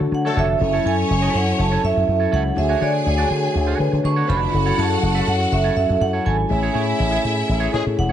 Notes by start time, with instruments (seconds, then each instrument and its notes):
Already playing: french horn section D3 A3 F#4 C#5, tine electric piano D3 D4 F#4 C#5
0.00 slap bass D3, muted clean electric guitar stroke
0.12 slap bass D3, vibraphone F#5, muted clean electric guitar stroke
0.25 horn section F#3 A3 D4 A4, clean electric guitar D4 F#4 C#5
0.36 slap bass F1, clean electric guitar D4 F#4 C#5, vibraphone E5
0.49 muted clean electric guitar stroke
0.60 slap bass F#1, tine electric piano F#3 C#4 E4 A4, french horn section F#3 E4 A4, string section C#4 C#5, muted clean electric guitar stroke
0.73 clean electric guitar E4 A4 C#5
0.84 slap bass F#2, tine electric piano F#3 C#4 E4 A4, clean electric guitar E4 A4 C#5, vibraphone G#5
1.09 slap bass F#1, muted clean electric guitar stroke
1.22 clean electric guitar E4 A4 E5
1.34 slap bass F#2, vibraphone F#5, muted clean electric guitar stroke
1.47 muted clean electric guitar stroke
1.59 slap bass F#1, vibraphone A5, muted clean electric guitar stroke
1.72 clean electric guitar E4 A4 C#5
1.82 slap bass F#2, tine electric piano F#3 C#4 E4 A4, vibraphone E5
1.96 slap bass F#2, muted clean electric guitar stroke
2.07 slap bass F#2, muted clean electric guitar stroke
2.20 clean electric guitar E4 A4 C#5
2.32 slap bass C#2, clean electric guitar E4 A4 C#5, vibraphone F#5
2.45 muted clean electric guitar stroke
2.56 slap bass D2, tine electric piano D3 D4 F#4 C#5, french horn section D3 A3 F#4, string section G#4 G#5, vibraphone E5, muted clean electric guitar stroke
2.69 clean electric guitar D4 F#4 C#5
2.81 tine electric piano D3 D4 F#4 C#5, slap bass D3, clean electric guitar D4 F#4 C#5, vibraphone D5
2.94 muted clean electric guitar stroke
3.05 slap bass D2, vibraphone C#5, muted clean electric guitar stroke
3.18 clean electric guitar D4 F#4 D5
3.31 slap bass D3
3.42 muted clean electric guitar stroke
3.54 slap bass D2, muted clean electric guitar stroke
3.67 clean electric guitar D4 F#4 C#5
3.79 tine electric piano D3 D4 F#4 B4, slap bass D3, muted clean electric guitar stroke
3.92 slap bass D3, muted clean electric guitar stroke
4.04 slap bass D3, string section G#3 G#4, vibraphone C#6, muted clean electric guitar stroke
4.12 string section A3 A4
4.16 string section B3 B4, clean electric guitar D4 F#4 C#5
4.28 slap bass F1, string section C#4 C#5, clean electric guitar D4 F#4 C#5, vibraphone B5
4.38 string section D4 D5, muted clean electric guitar stroke
4.44 string section E4 E5
4.53 slap bass F#1, tine electric piano F#3 C#4 E4 A4, french horn section F#3 C#4 E4 A4, string section F#4 F#5, muted clean electric guitar stroke
4.66 clean electric guitar E4 A4 C#5
4.77 slap bass F#2, tine electric piano F#3 C#4 E4 G#4, clean electric guitar E4 A4 C#5, vibraphone A5
4.84 tine electric piano A4
4.91 muted clean electric guitar stroke
5.02 slap bass F#1, muted clean electric guitar stroke
5.15 clean electric guitar E4 A4 E5
5.28 slap bass F#2, vibraphone F#5, muted clean electric guitar stroke
5.40 muted clean electric guitar stroke
5.52 slap bass F#1, vibraphone E5, muted clean electric guitar stroke
5.64 clean electric guitar E4 A4 C#5
5.76 slap bass F#2, tine electric piano F#3 C#4 E4 A4, vibraphone E5
5.89 slap bass F#2, muted clean electric guitar stroke
6.00 slap bass F#2, vibraphone F#5, muted clean electric guitar stroke
6.13 clean electric guitar E4 A4 C#5
6.25 slap bass G#1, clean electric guitar E4 A4 C#5, vibraphone G#5
6.38 muted clean electric guitar stroke
6.49 slap bass A1, tine electric piano A3 E4 G#4 C#5, french horn section A3 G#4, string section E4 E5, muted clean electric guitar stroke
6.63 clean electric guitar E4 G#4 C#5
6.74 slap bass A2, tine electric piano A3 E4 G#4 C#5, clean electric guitar E4 G#4 C#5
6.87 muted clean electric guitar stroke
6.99 slap bass A1, muted clean electric guitar stroke
7.11 clean electric guitar E4 G#4 E5
7.23 slap bass A2, muted clean electric guitar stroke
7.36 muted clean electric guitar stroke
7.47 slap bass A1, muted clean electric guitar stroke
7.60 clean electric guitar E4 G#4 C#5
7.72 slap bass A2, horn section E3 G#3 C#4 G#4, tine electric piano A3 E4 G#4 C#5, muted clean electric guitar stroke
7.85 slap bass A2, muted clean electric guitar stroke
7.97 slap bass E1, vibraphone F#5, muted clean electric guitar stroke
8.09 clean electric guitar C#5